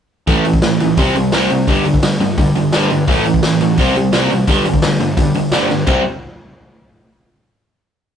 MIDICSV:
0, 0, Header, 1, 4, 480
1, 0, Start_track
1, 0, Key_signature, 0, "major"
1, 0, Tempo, 350467
1, 375, Time_signature, 4, 2, 24, 8
1, 6136, Tempo, 346021
1, 11242, End_track
2, 0, Start_track
2, 0, Title_t, "Overdriven electric guitar"
2, 0, Program_c, 0, 29
2, 378, Note_on_c, 0, 45, 77
2, 389, Note_on_c, 0, 52, 82
2, 393, Note_on_c, 0, 57, 94
2, 602, Note_off_c, 0, 45, 0
2, 607, Note_off_c, 0, 52, 0
2, 609, Note_off_c, 0, 57, 0
2, 617, Note_on_c, 0, 45, 63
2, 630, Note_on_c, 0, 52, 74
2, 831, Note_off_c, 0, 45, 0
2, 838, Note_off_c, 0, 52, 0
2, 867, Note_on_c, 0, 45, 61
2, 875, Note_on_c, 0, 52, 68
2, 1077, Note_off_c, 0, 45, 0
2, 1081, Note_off_c, 0, 52, 0
2, 1106, Note_on_c, 0, 45, 58
2, 1110, Note_on_c, 0, 52, 79
2, 1316, Note_off_c, 0, 45, 0
2, 1318, Note_off_c, 0, 52, 0
2, 1341, Note_on_c, 0, 48, 88
2, 1344, Note_on_c, 0, 55, 97
2, 1357, Note_on_c, 0, 60, 94
2, 1563, Note_off_c, 0, 48, 0
2, 1565, Note_off_c, 0, 55, 0
2, 1571, Note_off_c, 0, 60, 0
2, 1590, Note_on_c, 0, 48, 55
2, 1591, Note_on_c, 0, 55, 69
2, 1798, Note_off_c, 0, 48, 0
2, 1799, Note_off_c, 0, 55, 0
2, 1820, Note_on_c, 0, 48, 87
2, 1839, Note_on_c, 0, 55, 84
2, 1846, Note_on_c, 0, 60, 96
2, 2043, Note_off_c, 0, 48, 0
2, 2053, Note_off_c, 0, 55, 0
2, 2057, Note_off_c, 0, 60, 0
2, 2069, Note_on_c, 0, 48, 61
2, 2072, Note_on_c, 0, 55, 78
2, 2278, Note_off_c, 0, 48, 0
2, 2280, Note_off_c, 0, 55, 0
2, 2309, Note_on_c, 0, 43, 75
2, 2314, Note_on_c, 0, 50, 95
2, 2325, Note_on_c, 0, 55, 96
2, 2522, Note_off_c, 0, 43, 0
2, 2531, Note_off_c, 0, 50, 0
2, 2536, Note_off_c, 0, 55, 0
2, 2538, Note_on_c, 0, 43, 63
2, 2549, Note_on_c, 0, 50, 74
2, 2754, Note_off_c, 0, 43, 0
2, 2759, Note_off_c, 0, 50, 0
2, 2777, Note_on_c, 0, 50, 68
2, 2780, Note_on_c, 0, 43, 64
2, 2993, Note_off_c, 0, 50, 0
2, 2995, Note_off_c, 0, 43, 0
2, 3017, Note_on_c, 0, 43, 72
2, 3020, Note_on_c, 0, 50, 76
2, 3233, Note_off_c, 0, 43, 0
2, 3235, Note_off_c, 0, 50, 0
2, 3262, Note_on_c, 0, 43, 69
2, 3275, Note_on_c, 0, 50, 86
2, 3476, Note_off_c, 0, 43, 0
2, 3482, Note_off_c, 0, 50, 0
2, 3498, Note_on_c, 0, 43, 63
2, 3507, Note_on_c, 0, 50, 70
2, 3714, Note_off_c, 0, 43, 0
2, 3719, Note_off_c, 0, 50, 0
2, 3741, Note_on_c, 0, 43, 83
2, 3748, Note_on_c, 0, 50, 92
2, 3760, Note_on_c, 0, 55, 92
2, 3966, Note_off_c, 0, 43, 0
2, 3969, Note_off_c, 0, 50, 0
2, 3975, Note_off_c, 0, 55, 0
2, 3990, Note_on_c, 0, 43, 70
2, 3992, Note_on_c, 0, 50, 80
2, 4201, Note_off_c, 0, 43, 0
2, 4201, Note_off_c, 0, 50, 0
2, 4217, Note_on_c, 0, 45, 82
2, 4230, Note_on_c, 0, 52, 85
2, 4236, Note_on_c, 0, 57, 84
2, 4443, Note_off_c, 0, 45, 0
2, 4445, Note_off_c, 0, 52, 0
2, 4453, Note_off_c, 0, 57, 0
2, 4461, Note_on_c, 0, 52, 80
2, 4465, Note_on_c, 0, 45, 74
2, 4676, Note_off_c, 0, 52, 0
2, 4678, Note_off_c, 0, 45, 0
2, 4711, Note_on_c, 0, 45, 67
2, 4716, Note_on_c, 0, 52, 81
2, 4920, Note_off_c, 0, 45, 0
2, 4923, Note_off_c, 0, 52, 0
2, 4963, Note_on_c, 0, 45, 69
2, 4963, Note_on_c, 0, 52, 76
2, 5166, Note_off_c, 0, 45, 0
2, 5166, Note_off_c, 0, 52, 0
2, 5194, Note_on_c, 0, 48, 89
2, 5204, Note_on_c, 0, 55, 94
2, 5208, Note_on_c, 0, 60, 103
2, 5411, Note_off_c, 0, 48, 0
2, 5416, Note_off_c, 0, 55, 0
2, 5418, Note_off_c, 0, 60, 0
2, 5432, Note_on_c, 0, 48, 65
2, 5437, Note_on_c, 0, 55, 80
2, 5640, Note_off_c, 0, 48, 0
2, 5642, Note_off_c, 0, 55, 0
2, 5663, Note_on_c, 0, 48, 83
2, 5671, Note_on_c, 0, 55, 89
2, 5679, Note_on_c, 0, 60, 94
2, 5884, Note_off_c, 0, 48, 0
2, 5888, Note_off_c, 0, 55, 0
2, 5892, Note_off_c, 0, 60, 0
2, 5899, Note_on_c, 0, 48, 62
2, 5905, Note_on_c, 0, 55, 71
2, 6112, Note_off_c, 0, 48, 0
2, 6115, Note_off_c, 0, 55, 0
2, 6129, Note_on_c, 0, 43, 78
2, 6133, Note_on_c, 0, 50, 83
2, 6147, Note_on_c, 0, 55, 93
2, 6359, Note_off_c, 0, 43, 0
2, 6361, Note_off_c, 0, 50, 0
2, 6368, Note_off_c, 0, 55, 0
2, 6403, Note_on_c, 0, 43, 67
2, 6408, Note_on_c, 0, 50, 74
2, 6607, Note_off_c, 0, 43, 0
2, 6609, Note_off_c, 0, 50, 0
2, 6634, Note_on_c, 0, 43, 68
2, 6645, Note_on_c, 0, 50, 73
2, 6843, Note_off_c, 0, 43, 0
2, 6848, Note_off_c, 0, 50, 0
2, 6865, Note_on_c, 0, 43, 69
2, 6868, Note_on_c, 0, 50, 74
2, 7079, Note_off_c, 0, 43, 0
2, 7080, Note_off_c, 0, 50, 0
2, 7109, Note_on_c, 0, 43, 70
2, 7110, Note_on_c, 0, 50, 78
2, 7321, Note_off_c, 0, 43, 0
2, 7321, Note_off_c, 0, 50, 0
2, 7348, Note_on_c, 0, 50, 69
2, 7352, Note_on_c, 0, 43, 64
2, 7561, Note_off_c, 0, 50, 0
2, 7563, Note_off_c, 0, 43, 0
2, 7587, Note_on_c, 0, 43, 83
2, 7598, Note_on_c, 0, 50, 85
2, 7603, Note_on_c, 0, 55, 90
2, 7798, Note_off_c, 0, 43, 0
2, 7809, Note_off_c, 0, 50, 0
2, 7815, Note_on_c, 0, 43, 65
2, 7818, Note_off_c, 0, 55, 0
2, 7825, Note_on_c, 0, 50, 73
2, 8034, Note_off_c, 0, 43, 0
2, 8040, Note_off_c, 0, 50, 0
2, 8057, Note_on_c, 0, 48, 76
2, 8064, Note_on_c, 0, 55, 92
2, 8077, Note_on_c, 0, 60, 98
2, 8251, Note_off_c, 0, 48, 0
2, 8255, Note_off_c, 0, 55, 0
2, 8261, Note_off_c, 0, 60, 0
2, 11242, End_track
3, 0, Start_track
3, 0, Title_t, "Picked electric bass"
3, 0, Program_c, 1, 34
3, 372, Note_on_c, 1, 33, 80
3, 765, Note_off_c, 1, 33, 0
3, 886, Note_on_c, 1, 33, 77
3, 1069, Note_off_c, 1, 33, 0
3, 1102, Note_on_c, 1, 35, 88
3, 1345, Note_off_c, 1, 35, 0
3, 1345, Note_on_c, 1, 36, 87
3, 1537, Note_off_c, 1, 36, 0
3, 1572, Note_on_c, 1, 36, 79
3, 1770, Note_off_c, 1, 36, 0
3, 1801, Note_on_c, 1, 36, 90
3, 2003, Note_off_c, 1, 36, 0
3, 2049, Note_on_c, 1, 48, 86
3, 2248, Note_off_c, 1, 48, 0
3, 2298, Note_on_c, 1, 31, 88
3, 2690, Note_off_c, 1, 31, 0
3, 2766, Note_on_c, 1, 31, 82
3, 2967, Note_off_c, 1, 31, 0
3, 3011, Note_on_c, 1, 31, 92
3, 3210, Note_off_c, 1, 31, 0
3, 3260, Note_on_c, 1, 43, 82
3, 3456, Note_off_c, 1, 43, 0
3, 3503, Note_on_c, 1, 31, 88
3, 3698, Note_off_c, 1, 31, 0
3, 3720, Note_on_c, 1, 31, 84
3, 3924, Note_off_c, 1, 31, 0
3, 3974, Note_on_c, 1, 43, 89
3, 4172, Note_off_c, 1, 43, 0
3, 4220, Note_on_c, 1, 33, 88
3, 4612, Note_off_c, 1, 33, 0
3, 4693, Note_on_c, 1, 33, 79
3, 4891, Note_off_c, 1, 33, 0
3, 4937, Note_on_c, 1, 35, 90
3, 5133, Note_off_c, 1, 35, 0
3, 5174, Note_on_c, 1, 36, 93
3, 5372, Note_off_c, 1, 36, 0
3, 5401, Note_on_c, 1, 36, 83
3, 5603, Note_off_c, 1, 36, 0
3, 5659, Note_on_c, 1, 36, 81
3, 5853, Note_off_c, 1, 36, 0
3, 5913, Note_on_c, 1, 33, 86
3, 6101, Note_off_c, 1, 33, 0
3, 6134, Note_on_c, 1, 31, 86
3, 6529, Note_off_c, 1, 31, 0
3, 6619, Note_on_c, 1, 31, 86
3, 6815, Note_off_c, 1, 31, 0
3, 6867, Note_on_c, 1, 31, 88
3, 7061, Note_off_c, 1, 31, 0
3, 7091, Note_on_c, 1, 43, 89
3, 7291, Note_off_c, 1, 43, 0
3, 7363, Note_on_c, 1, 31, 83
3, 7551, Note_off_c, 1, 31, 0
3, 7586, Note_on_c, 1, 31, 80
3, 7781, Note_off_c, 1, 31, 0
3, 7823, Note_on_c, 1, 43, 80
3, 8019, Note_off_c, 1, 43, 0
3, 8063, Note_on_c, 1, 36, 85
3, 8286, Note_off_c, 1, 36, 0
3, 11242, End_track
4, 0, Start_track
4, 0, Title_t, "Drums"
4, 373, Note_on_c, 9, 46, 75
4, 375, Note_on_c, 9, 36, 100
4, 510, Note_off_c, 9, 46, 0
4, 512, Note_off_c, 9, 36, 0
4, 612, Note_on_c, 9, 46, 61
4, 733, Note_on_c, 9, 36, 92
4, 749, Note_off_c, 9, 46, 0
4, 848, Note_on_c, 9, 46, 69
4, 849, Note_on_c, 9, 38, 109
4, 870, Note_off_c, 9, 36, 0
4, 985, Note_off_c, 9, 46, 0
4, 986, Note_off_c, 9, 38, 0
4, 1097, Note_on_c, 9, 46, 54
4, 1234, Note_off_c, 9, 46, 0
4, 1334, Note_on_c, 9, 36, 111
4, 1335, Note_on_c, 9, 46, 79
4, 1471, Note_off_c, 9, 36, 0
4, 1472, Note_off_c, 9, 46, 0
4, 1583, Note_on_c, 9, 46, 56
4, 1720, Note_off_c, 9, 46, 0
4, 1809, Note_on_c, 9, 46, 79
4, 1810, Note_on_c, 9, 38, 99
4, 1946, Note_off_c, 9, 46, 0
4, 1947, Note_off_c, 9, 38, 0
4, 2052, Note_on_c, 9, 46, 49
4, 2189, Note_off_c, 9, 46, 0
4, 2293, Note_on_c, 9, 36, 105
4, 2297, Note_on_c, 9, 46, 76
4, 2430, Note_off_c, 9, 36, 0
4, 2434, Note_off_c, 9, 46, 0
4, 2537, Note_on_c, 9, 46, 59
4, 2656, Note_on_c, 9, 36, 91
4, 2673, Note_off_c, 9, 46, 0
4, 2775, Note_on_c, 9, 46, 78
4, 2776, Note_on_c, 9, 38, 115
4, 2793, Note_off_c, 9, 36, 0
4, 2912, Note_off_c, 9, 46, 0
4, 2913, Note_off_c, 9, 38, 0
4, 3024, Note_on_c, 9, 46, 51
4, 3160, Note_off_c, 9, 46, 0
4, 3255, Note_on_c, 9, 46, 74
4, 3256, Note_on_c, 9, 36, 107
4, 3392, Note_off_c, 9, 46, 0
4, 3393, Note_off_c, 9, 36, 0
4, 3494, Note_on_c, 9, 46, 49
4, 3631, Note_off_c, 9, 46, 0
4, 3731, Note_on_c, 9, 46, 68
4, 3732, Note_on_c, 9, 38, 103
4, 3868, Note_off_c, 9, 46, 0
4, 3869, Note_off_c, 9, 38, 0
4, 3976, Note_on_c, 9, 46, 50
4, 4113, Note_off_c, 9, 46, 0
4, 4213, Note_on_c, 9, 36, 99
4, 4213, Note_on_c, 9, 46, 73
4, 4350, Note_off_c, 9, 36, 0
4, 4350, Note_off_c, 9, 46, 0
4, 4457, Note_on_c, 9, 46, 55
4, 4576, Note_on_c, 9, 36, 83
4, 4594, Note_off_c, 9, 46, 0
4, 4693, Note_on_c, 9, 46, 73
4, 4694, Note_on_c, 9, 38, 110
4, 4713, Note_off_c, 9, 36, 0
4, 4830, Note_off_c, 9, 46, 0
4, 4831, Note_off_c, 9, 38, 0
4, 4938, Note_on_c, 9, 46, 58
4, 5075, Note_off_c, 9, 46, 0
4, 5172, Note_on_c, 9, 46, 82
4, 5173, Note_on_c, 9, 36, 107
4, 5309, Note_off_c, 9, 46, 0
4, 5310, Note_off_c, 9, 36, 0
4, 5423, Note_on_c, 9, 46, 53
4, 5560, Note_off_c, 9, 46, 0
4, 5650, Note_on_c, 9, 46, 69
4, 5651, Note_on_c, 9, 38, 99
4, 5787, Note_off_c, 9, 46, 0
4, 5788, Note_off_c, 9, 38, 0
4, 5894, Note_on_c, 9, 46, 55
4, 6031, Note_off_c, 9, 46, 0
4, 6129, Note_on_c, 9, 36, 111
4, 6131, Note_on_c, 9, 46, 81
4, 6268, Note_off_c, 9, 36, 0
4, 6270, Note_off_c, 9, 46, 0
4, 6377, Note_on_c, 9, 46, 58
4, 6491, Note_on_c, 9, 36, 89
4, 6515, Note_off_c, 9, 46, 0
4, 6609, Note_on_c, 9, 46, 76
4, 6610, Note_on_c, 9, 38, 112
4, 6630, Note_off_c, 9, 36, 0
4, 6748, Note_off_c, 9, 46, 0
4, 6749, Note_off_c, 9, 38, 0
4, 6860, Note_on_c, 9, 46, 54
4, 6999, Note_off_c, 9, 46, 0
4, 7095, Note_on_c, 9, 36, 106
4, 7095, Note_on_c, 9, 46, 74
4, 7233, Note_off_c, 9, 36, 0
4, 7234, Note_off_c, 9, 46, 0
4, 7335, Note_on_c, 9, 46, 50
4, 7473, Note_off_c, 9, 46, 0
4, 7573, Note_on_c, 9, 46, 65
4, 7574, Note_on_c, 9, 38, 109
4, 7711, Note_off_c, 9, 46, 0
4, 7713, Note_off_c, 9, 38, 0
4, 7816, Note_on_c, 9, 38, 51
4, 7955, Note_off_c, 9, 38, 0
4, 8062, Note_on_c, 9, 36, 98
4, 8065, Note_on_c, 9, 49, 83
4, 8200, Note_off_c, 9, 36, 0
4, 8204, Note_off_c, 9, 49, 0
4, 11242, End_track
0, 0, End_of_file